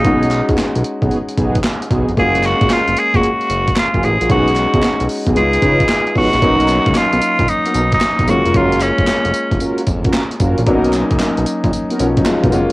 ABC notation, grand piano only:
X:1
M:4/4
L:1/16
Q:"Swing 16ths" 1/4=113
K:Blyd
V:1 name="Grand piano"
[G,CDF]16 | [G,A,Ce]16 | [G,CDF]8 [G,B,DE]8 | [F,A,CD]12- [F,A,CD]2 [G,A,CE]2- |
[G,A,CE]12- [G,A,CE]2 z2 | [F,A,C=D^D]8- [F,A,C=D^D]2 z4 [G,A,CE]2 |]
V:2 name="Grand piano"
z16 | z16 | z16 | z16 |
z16 | z8 z2 [E,C] [F,D] [G,E] [A,F]2 z |]